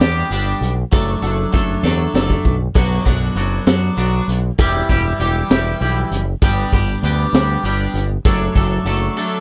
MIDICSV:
0, 0, Header, 1, 4, 480
1, 0, Start_track
1, 0, Key_signature, 2, "minor"
1, 0, Tempo, 610998
1, 725, Time_signature, 6, 3, 24, 8
1, 7385, End_track
2, 0, Start_track
2, 0, Title_t, "Clean electric guitar"
2, 0, Program_c, 0, 27
2, 11, Note_on_c, 0, 67, 88
2, 12, Note_on_c, 0, 62, 81
2, 14, Note_on_c, 0, 59, 61
2, 20, Note_on_c, 0, 55, 70
2, 235, Note_off_c, 0, 55, 0
2, 239, Note_off_c, 0, 59, 0
2, 243, Note_off_c, 0, 62, 0
2, 245, Note_on_c, 0, 55, 67
2, 248, Note_off_c, 0, 67, 0
2, 248, Note_on_c, 0, 59, 69
2, 252, Note_on_c, 0, 62, 75
2, 256, Note_on_c, 0, 67, 73
2, 557, Note_off_c, 0, 55, 0
2, 559, Note_off_c, 0, 59, 0
2, 561, Note_off_c, 0, 62, 0
2, 563, Note_off_c, 0, 67, 0
2, 720, Note_on_c, 0, 54, 88
2, 724, Note_on_c, 0, 57, 74
2, 728, Note_on_c, 0, 62, 91
2, 729, Note_on_c, 0, 69, 93
2, 952, Note_off_c, 0, 69, 0
2, 956, Note_off_c, 0, 57, 0
2, 956, Note_off_c, 0, 62, 0
2, 960, Note_off_c, 0, 54, 0
2, 962, Note_on_c, 0, 69, 77
2, 965, Note_on_c, 0, 57, 67
2, 966, Note_on_c, 0, 62, 66
2, 969, Note_on_c, 0, 54, 60
2, 1189, Note_off_c, 0, 54, 0
2, 1191, Note_off_c, 0, 57, 0
2, 1197, Note_off_c, 0, 62, 0
2, 1198, Note_off_c, 0, 69, 0
2, 1198, Note_on_c, 0, 54, 74
2, 1201, Note_on_c, 0, 57, 68
2, 1206, Note_on_c, 0, 62, 73
2, 1207, Note_on_c, 0, 69, 75
2, 1432, Note_off_c, 0, 69, 0
2, 1435, Note_off_c, 0, 62, 0
2, 1440, Note_off_c, 0, 57, 0
2, 1442, Note_off_c, 0, 54, 0
2, 1442, Note_on_c, 0, 69, 84
2, 1445, Note_on_c, 0, 62, 77
2, 1449, Note_on_c, 0, 57, 64
2, 1452, Note_on_c, 0, 54, 71
2, 1677, Note_off_c, 0, 54, 0
2, 1678, Note_off_c, 0, 57, 0
2, 1681, Note_off_c, 0, 62, 0
2, 1684, Note_off_c, 0, 69, 0
2, 1686, Note_on_c, 0, 54, 61
2, 1687, Note_on_c, 0, 57, 67
2, 1690, Note_on_c, 0, 62, 71
2, 1692, Note_on_c, 0, 69, 69
2, 1998, Note_off_c, 0, 54, 0
2, 1999, Note_off_c, 0, 57, 0
2, 2000, Note_off_c, 0, 62, 0
2, 2001, Note_off_c, 0, 69, 0
2, 2159, Note_on_c, 0, 54, 74
2, 2163, Note_on_c, 0, 59, 81
2, 2168, Note_on_c, 0, 62, 79
2, 2169, Note_on_c, 0, 66, 94
2, 2390, Note_off_c, 0, 66, 0
2, 2394, Note_off_c, 0, 62, 0
2, 2398, Note_off_c, 0, 59, 0
2, 2400, Note_on_c, 0, 66, 70
2, 2401, Note_off_c, 0, 54, 0
2, 2403, Note_on_c, 0, 62, 69
2, 2407, Note_on_c, 0, 59, 64
2, 2411, Note_on_c, 0, 54, 51
2, 2633, Note_off_c, 0, 54, 0
2, 2635, Note_off_c, 0, 59, 0
2, 2638, Note_off_c, 0, 62, 0
2, 2640, Note_off_c, 0, 66, 0
2, 2643, Note_on_c, 0, 54, 61
2, 2644, Note_on_c, 0, 59, 72
2, 2647, Note_on_c, 0, 62, 70
2, 2650, Note_on_c, 0, 66, 71
2, 2873, Note_off_c, 0, 66, 0
2, 2876, Note_off_c, 0, 62, 0
2, 2878, Note_off_c, 0, 59, 0
2, 2880, Note_off_c, 0, 54, 0
2, 2883, Note_on_c, 0, 66, 78
2, 2886, Note_on_c, 0, 62, 84
2, 2887, Note_on_c, 0, 59, 66
2, 2890, Note_on_c, 0, 54, 61
2, 3111, Note_off_c, 0, 54, 0
2, 3115, Note_off_c, 0, 59, 0
2, 3116, Note_off_c, 0, 62, 0
2, 3120, Note_off_c, 0, 66, 0
2, 3120, Note_on_c, 0, 54, 64
2, 3124, Note_on_c, 0, 59, 66
2, 3125, Note_on_c, 0, 62, 77
2, 3129, Note_on_c, 0, 66, 65
2, 3435, Note_off_c, 0, 54, 0
2, 3437, Note_off_c, 0, 59, 0
2, 3438, Note_off_c, 0, 62, 0
2, 3440, Note_off_c, 0, 66, 0
2, 3604, Note_on_c, 0, 52, 79
2, 3609, Note_on_c, 0, 55, 83
2, 3610, Note_on_c, 0, 64, 94
2, 3613, Note_on_c, 0, 67, 100
2, 3835, Note_off_c, 0, 67, 0
2, 3840, Note_off_c, 0, 64, 0
2, 3843, Note_off_c, 0, 55, 0
2, 3845, Note_off_c, 0, 52, 0
2, 3845, Note_on_c, 0, 67, 72
2, 3849, Note_on_c, 0, 64, 68
2, 3853, Note_on_c, 0, 55, 68
2, 3855, Note_on_c, 0, 52, 58
2, 4074, Note_off_c, 0, 52, 0
2, 4077, Note_off_c, 0, 55, 0
2, 4077, Note_off_c, 0, 64, 0
2, 4081, Note_off_c, 0, 67, 0
2, 4084, Note_on_c, 0, 52, 65
2, 4086, Note_on_c, 0, 55, 67
2, 4086, Note_on_c, 0, 64, 71
2, 4091, Note_on_c, 0, 67, 79
2, 4317, Note_off_c, 0, 67, 0
2, 4322, Note_off_c, 0, 64, 0
2, 4324, Note_off_c, 0, 55, 0
2, 4325, Note_off_c, 0, 52, 0
2, 4326, Note_on_c, 0, 67, 85
2, 4331, Note_on_c, 0, 64, 78
2, 4334, Note_on_c, 0, 55, 63
2, 4335, Note_on_c, 0, 52, 66
2, 4556, Note_off_c, 0, 52, 0
2, 4558, Note_off_c, 0, 55, 0
2, 4560, Note_off_c, 0, 64, 0
2, 4564, Note_off_c, 0, 67, 0
2, 4565, Note_on_c, 0, 52, 76
2, 4567, Note_on_c, 0, 55, 69
2, 4570, Note_on_c, 0, 64, 79
2, 4573, Note_on_c, 0, 67, 71
2, 4878, Note_off_c, 0, 52, 0
2, 4879, Note_off_c, 0, 55, 0
2, 4880, Note_off_c, 0, 64, 0
2, 4882, Note_off_c, 0, 67, 0
2, 5049, Note_on_c, 0, 55, 90
2, 5053, Note_on_c, 0, 59, 98
2, 5055, Note_on_c, 0, 62, 96
2, 5060, Note_on_c, 0, 67, 98
2, 5282, Note_off_c, 0, 62, 0
2, 5282, Note_off_c, 0, 67, 0
2, 5287, Note_off_c, 0, 55, 0
2, 5290, Note_off_c, 0, 59, 0
2, 5291, Note_on_c, 0, 62, 72
2, 5291, Note_on_c, 0, 67, 72
2, 5298, Note_on_c, 0, 59, 63
2, 5301, Note_on_c, 0, 55, 61
2, 5519, Note_off_c, 0, 55, 0
2, 5524, Note_off_c, 0, 59, 0
2, 5526, Note_off_c, 0, 62, 0
2, 5528, Note_on_c, 0, 55, 73
2, 5529, Note_off_c, 0, 67, 0
2, 5533, Note_on_c, 0, 59, 79
2, 5535, Note_on_c, 0, 62, 68
2, 5540, Note_on_c, 0, 67, 82
2, 5764, Note_off_c, 0, 67, 0
2, 5767, Note_off_c, 0, 55, 0
2, 5767, Note_off_c, 0, 59, 0
2, 5767, Note_off_c, 0, 62, 0
2, 5773, Note_on_c, 0, 67, 78
2, 5776, Note_on_c, 0, 62, 78
2, 5777, Note_on_c, 0, 59, 68
2, 5782, Note_on_c, 0, 55, 63
2, 5998, Note_off_c, 0, 55, 0
2, 6001, Note_off_c, 0, 59, 0
2, 6005, Note_off_c, 0, 62, 0
2, 6008, Note_on_c, 0, 55, 65
2, 6009, Note_off_c, 0, 67, 0
2, 6011, Note_on_c, 0, 59, 69
2, 6015, Note_on_c, 0, 62, 79
2, 6019, Note_on_c, 0, 67, 79
2, 6319, Note_off_c, 0, 55, 0
2, 6320, Note_off_c, 0, 59, 0
2, 6322, Note_off_c, 0, 62, 0
2, 6324, Note_off_c, 0, 67, 0
2, 6485, Note_on_c, 0, 54, 81
2, 6486, Note_on_c, 0, 57, 83
2, 6491, Note_on_c, 0, 62, 91
2, 6494, Note_on_c, 0, 69, 94
2, 6714, Note_off_c, 0, 69, 0
2, 6717, Note_off_c, 0, 62, 0
2, 6722, Note_off_c, 0, 57, 0
2, 6724, Note_on_c, 0, 69, 76
2, 6725, Note_off_c, 0, 54, 0
2, 6727, Note_on_c, 0, 62, 75
2, 6731, Note_on_c, 0, 57, 58
2, 6735, Note_on_c, 0, 54, 62
2, 6949, Note_off_c, 0, 54, 0
2, 6952, Note_off_c, 0, 57, 0
2, 6955, Note_off_c, 0, 62, 0
2, 6959, Note_on_c, 0, 54, 73
2, 6962, Note_off_c, 0, 69, 0
2, 6962, Note_on_c, 0, 57, 69
2, 6965, Note_on_c, 0, 62, 71
2, 6971, Note_on_c, 0, 69, 78
2, 7195, Note_off_c, 0, 69, 0
2, 7200, Note_off_c, 0, 62, 0
2, 7201, Note_off_c, 0, 57, 0
2, 7202, Note_off_c, 0, 54, 0
2, 7204, Note_on_c, 0, 69, 90
2, 7210, Note_on_c, 0, 57, 74
2, 7210, Note_on_c, 0, 62, 84
2, 7214, Note_on_c, 0, 54, 76
2, 7385, Note_off_c, 0, 54, 0
2, 7385, Note_off_c, 0, 57, 0
2, 7385, Note_off_c, 0, 62, 0
2, 7385, Note_off_c, 0, 69, 0
2, 7385, End_track
3, 0, Start_track
3, 0, Title_t, "Fingered electric bass"
3, 0, Program_c, 1, 33
3, 0, Note_on_c, 1, 40, 81
3, 169, Note_off_c, 1, 40, 0
3, 239, Note_on_c, 1, 31, 76
3, 409, Note_off_c, 1, 31, 0
3, 479, Note_on_c, 1, 35, 76
3, 649, Note_off_c, 1, 35, 0
3, 726, Note_on_c, 1, 30, 84
3, 894, Note_off_c, 1, 30, 0
3, 958, Note_on_c, 1, 30, 85
3, 1129, Note_off_c, 1, 30, 0
3, 1206, Note_on_c, 1, 30, 69
3, 1374, Note_off_c, 1, 30, 0
3, 1439, Note_on_c, 1, 40, 77
3, 1609, Note_off_c, 1, 40, 0
3, 1679, Note_on_c, 1, 30, 76
3, 1850, Note_off_c, 1, 30, 0
3, 1925, Note_on_c, 1, 35, 76
3, 2094, Note_off_c, 1, 35, 0
3, 2163, Note_on_c, 1, 35, 89
3, 2334, Note_off_c, 1, 35, 0
3, 2403, Note_on_c, 1, 35, 87
3, 2574, Note_off_c, 1, 35, 0
3, 2633, Note_on_c, 1, 30, 76
3, 2808, Note_off_c, 1, 30, 0
3, 2880, Note_on_c, 1, 42, 86
3, 3053, Note_off_c, 1, 42, 0
3, 3120, Note_on_c, 1, 35, 83
3, 3293, Note_off_c, 1, 35, 0
3, 3360, Note_on_c, 1, 35, 85
3, 3533, Note_off_c, 1, 35, 0
3, 3600, Note_on_c, 1, 28, 89
3, 3773, Note_off_c, 1, 28, 0
3, 3843, Note_on_c, 1, 28, 87
3, 4014, Note_off_c, 1, 28, 0
3, 4082, Note_on_c, 1, 28, 78
3, 4254, Note_off_c, 1, 28, 0
3, 4322, Note_on_c, 1, 28, 76
3, 4494, Note_off_c, 1, 28, 0
3, 4564, Note_on_c, 1, 35, 78
3, 4735, Note_off_c, 1, 35, 0
3, 4801, Note_on_c, 1, 30, 76
3, 4974, Note_off_c, 1, 30, 0
3, 5043, Note_on_c, 1, 31, 91
3, 5214, Note_off_c, 1, 31, 0
3, 5282, Note_on_c, 1, 31, 84
3, 5454, Note_off_c, 1, 31, 0
3, 5521, Note_on_c, 1, 38, 83
3, 5693, Note_off_c, 1, 38, 0
3, 5757, Note_on_c, 1, 38, 88
3, 5930, Note_off_c, 1, 38, 0
3, 5997, Note_on_c, 1, 31, 87
3, 6170, Note_off_c, 1, 31, 0
3, 6236, Note_on_c, 1, 31, 80
3, 6410, Note_off_c, 1, 31, 0
3, 6481, Note_on_c, 1, 30, 94
3, 6653, Note_off_c, 1, 30, 0
3, 6719, Note_on_c, 1, 30, 89
3, 6892, Note_off_c, 1, 30, 0
3, 6953, Note_on_c, 1, 30, 77
3, 7127, Note_off_c, 1, 30, 0
3, 7385, End_track
4, 0, Start_track
4, 0, Title_t, "Drums"
4, 5, Note_on_c, 9, 42, 72
4, 9, Note_on_c, 9, 38, 95
4, 84, Note_off_c, 9, 42, 0
4, 88, Note_off_c, 9, 38, 0
4, 245, Note_on_c, 9, 42, 52
4, 324, Note_off_c, 9, 42, 0
4, 488, Note_on_c, 9, 42, 62
4, 567, Note_off_c, 9, 42, 0
4, 727, Note_on_c, 9, 36, 117
4, 729, Note_on_c, 9, 42, 88
4, 805, Note_off_c, 9, 36, 0
4, 808, Note_off_c, 9, 42, 0
4, 971, Note_on_c, 9, 42, 55
4, 1049, Note_off_c, 9, 42, 0
4, 1206, Note_on_c, 9, 36, 69
4, 1207, Note_on_c, 9, 42, 53
4, 1285, Note_off_c, 9, 36, 0
4, 1286, Note_off_c, 9, 42, 0
4, 1452, Note_on_c, 9, 38, 46
4, 1531, Note_off_c, 9, 38, 0
4, 1691, Note_on_c, 9, 38, 67
4, 1770, Note_off_c, 9, 38, 0
4, 1805, Note_on_c, 9, 36, 62
4, 1884, Note_off_c, 9, 36, 0
4, 1925, Note_on_c, 9, 36, 78
4, 2004, Note_off_c, 9, 36, 0
4, 2163, Note_on_c, 9, 36, 112
4, 2164, Note_on_c, 9, 49, 97
4, 2242, Note_off_c, 9, 36, 0
4, 2243, Note_off_c, 9, 49, 0
4, 2403, Note_on_c, 9, 36, 63
4, 2405, Note_on_c, 9, 42, 50
4, 2482, Note_off_c, 9, 36, 0
4, 2484, Note_off_c, 9, 42, 0
4, 2645, Note_on_c, 9, 42, 54
4, 2724, Note_off_c, 9, 42, 0
4, 2881, Note_on_c, 9, 42, 81
4, 2885, Note_on_c, 9, 38, 103
4, 2959, Note_off_c, 9, 42, 0
4, 2963, Note_off_c, 9, 38, 0
4, 3124, Note_on_c, 9, 42, 59
4, 3203, Note_off_c, 9, 42, 0
4, 3366, Note_on_c, 9, 42, 64
4, 3445, Note_off_c, 9, 42, 0
4, 3604, Note_on_c, 9, 36, 112
4, 3606, Note_on_c, 9, 42, 90
4, 3682, Note_off_c, 9, 36, 0
4, 3684, Note_off_c, 9, 42, 0
4, 3844, Note_on_c, 9, 36, 69
4, 3846, Note_on_c, 9, 42, 56
4, 3923, Note_off_c, 9, 36, 0
4, 3925, Note_off_c, 9, 42, 0
4, 4083, Note_on_c, 9, 42, 61
4, 4162, Note_off_c, 9, 42, 0
4, 4324, Note_on_c, 9, 42, 79
4, 4328, Note_on_c, 9, 38, 98
4, 4403, Note_off_c, 9, 42, 0
4, 4407, Note_off_c, 9, 38, 0
4, 4562, Note_on_c, 9, 42, 63
4, 4641, Note_off_c, 9, 42, 0
4, 4804, Note_on_c, 9, 42, 72
4, 4883, Note_off_c, 9, 42, 0
4, 5042, Note_on_c, 9, 42, 104
4, 5044, Note_on_c, 9, 36, 107
4, 5120, Note_off_c, 9, 42, 0
4, 5122, Note_off_c, 9, 36, 0
4, 5282, Note_on_c, 9, 42, 62
4, 5284, Note_on_c, 9, 36, 75
4, 5360, Note_off_c, 9, 42, 0
4, 5362, Note_off_c, 9, 36, 0
4, 5525, Note_on_c, 9, 42, 61
4, 5603, Note_off_c, 9, 42, 0
4, 5767, Note_on_c, 9, 42, 84
4, 5771, Note_on_c, 9, 38, 104
4, 5845, Note_off_c, 9, 42, 0
4, 5849, Note_off_c, 9, 38, 0
4, 6004, Note_on_c, 9, 42, 60
4, 6083, Note_off_c, 9, 42, 0
4, 6242, Note_on_c, 9, 42, 66
4, 6321, Note_off_c, 9, 42, 0
4, 6480, Note_on_c, 9, 42, 87
4, 6482, Note_on_c, 9, 36, 112
4, 6559, Note_off_c, 9, 42, 0
4, 6561, Note_off_c, 9, 36, 0
4, 6718, Note_on_c, 9, 42, 55
4, 6721, Note_on_c, 9, 36, 76
4, 6797, Note_off_c, 9, 42, 0
4, 6799, Note_off_c, 9, 36, 0
4, 6959, Note_on_c, 9, 42, 54
4, 7038, Note_off_c, 9, 42, 0
4, 7385, End_track
0, 0, End_of_file